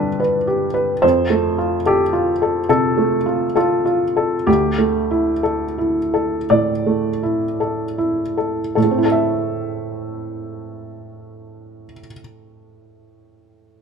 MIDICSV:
0, 0, Header, 1, 2, 480
1, 0, Start_track
1, 0, Key_signature, 0, "minor"
1, 0, Tempo, 825309
1, 601, Time_signature, 4, 2, 24, 8
1, 1080, Tempo, 852273
1, 2040, Tempo, 911854
1, 2520, Tempo, 967742
1, 3000, Tempo, 1071429
1, 3960, Tempo, 1153846
1, 6554, End_track
2, 0, Start_track
2, 0, Title_t, "Felt piano"
2, 0, Program_c, 0, 0
2, 0, Control_c, 0, 64, 127
2, 0, Note_on_c, 0, 50, 38
2, 0, Note_on_c, 0, 55, 36
2, 0, Note_on_c, 0, 62, 32
2, 0, Note_on_c, 0, 67, 36
2, 0, Note_on_c, 0, 71, 61
2, 106, Note_off_c, 0, 71, 0
2, 114, Note_on_c, 0, 71, 36
2, 217, Note_off_c, 0, 62, 0
2, 275, Note_off_c, 0, 67, 0
2, 275, Note_on_c, 0, 67, 34
2, 374, Note_off_c, 0, 71, 0
2, 430, Note_on_c, 0, 71, 39
2, 534, Note_off_c, 0, 67, 0
2, 593, Note_on_c, 0, 72, 61
2, 595, Note_off_c, 0, 71, 0
2, 602, Note_on_c, 0, 41, 42
2, 611, Control_c, 0, 64, 0
2, 614, Note_off_c, 0, 50, 0
2, 616, Note_off_c, 0, 55, 0
2, 717, Control_c, 0, 64, 127
2, 757, Note_on_c, 0, 57, 34
2, 921, Note_on_c, 0, 65, 38
2, 1014, Note_off_c, 0, 57, 0
2, 1053, Note_off_c, 0, 72, 0
2, 1083, Note_on_c, 0, 69, 35
2, 1087, Note_on_c, 0, 67, 59
2, 1174, Note_off_c, 0, 65, 0
2, 1234, Note_on_c, 0, 65, 38
2, 1331, Note_off_c, 0, 69, 0
2, 1397, Note_on_c, 0, 69, 38
2, 1487, Note_off_c, 0, 65, 0
2, 1530, Note_off_c, 0, 41, 0
2, 1533, Note_off_c, 0, 67, 0
2, 1543, Note_off_c, 0, 69, 0
2, 1551, Note_on_c, 0, 48, 35
2, 1551, Note_on_c, 0, 69, 50
2, 1710, Note_on_c, 0, 57, 37
2, 1809, Note_off_c, 0, 48, 0
2, 1870, Note_on_c, 0, 65, 35
2, 1972, Note_off_c, 0, 57, 0
2, 2017, Note_off_c, 0, 69, 0
2, 2035, Note_off_c, 0, 65, 0
2, 2036, Note_on_c, 0, 69, 36
2, 2043, Note_on_c, 0, 65, 46
2, 2186, Note_off_c, 0, 65, 0
2, 2194, Note_on_c, 0, 65, 34
2, 2290, Note_off_c, 0, 69, 0
2, 2358, Note_on_c, 0, 69, 35
2, 2453, Note_off_c, 0, 65, 0
2, 2516, Note_on_c, 0, 67, 56
2, 2517, Note_on_c, 0, 38, 40
2, 2520, Note_off_c, 0, 69, 0
2, 2529, Control_c, 0, 64, 0
2, 2631, Control_c, 0, 64, 127
2, 2675, Note_on_c, 0, 57, 31
2, 2835, Note_on_c, 0, 64, 30
2, 2933, Note_off_c, 0, 57, 0
2, 2978, Note_off_c, 0, 67, 0
2, 2996, Note_on_c, 0, 69, 30
2, 3090, Note_off_c, 0, 64, 0
2, 3153, Note_on_c, 0, 64, 31
2, 3245, Note_off_c, 0, 69, 0
2, 3312, Note_on_c, 0, 69, 31
2, 3407, Note_off_c, 0, 64, 0
2, 3452, Note_off_c, 0, 38, 0
2, 3474, Note_on_c, 0, 74, 49
2, 3476, Note_on_c, 0, 45, 30
2, 3567, Note_off_c, 0, 69, 0
2, 3638, Note_on_c, 0, 57, 26
2, 3731, Note_off_c, 0, 45, 0
2, 3802, Note_on_c, 0, 64, 28
2, 3896, Note_off_c, 0, 57, 0
2, 3968, Note_on_c, 0, 69, 27
2, 4059, Note_off_c, 0, 64, 0
2, 4125, Note_on_c, 0, 64, 26
2, 4224, Note_off_c, 0, 69, 0
2, 4289, Note_on_c, 0, 69, 23
2, 4387, Note_off_c, 0, 64, 0
2, 4434, Note_off_c, 0, 74, 0
2, 4440, Note_off_c, 0, 69, 0
2, 4447, Note_on_c, 0, 69, 36
2, 4454, Note_on_c, 0, 45, 28
2, 4461, Control_c, 0, 64, 0
2, 4483, Note_on_c, 0, 57, 28
2, 4512, Note_on_c, 0, 60, 28
2, 4542, Note_on_c, 0, 64, 27
2, 4554, Control_c, 0, 64, 127
2, 4564, Note_off_c, 0, 69, 0
2, 4570, Note_on_c, 0, 69, 28
2, 4598, Note_on_c, 0, 76, 27
2, 5734, Note_off_c, 0, 45, 0
2, 5763, Note_off_c, 0, 57, 0
2, 5792, Note_off_c, 0, 60, 0
2, 5822, Note_off_c, 0, 64, 0
2, 5851, Note_off_c, 0, 69, 0
2, 5879, Note_off_c, 0, 76, 0
2, 6554, End_track
0, 0, End_of_file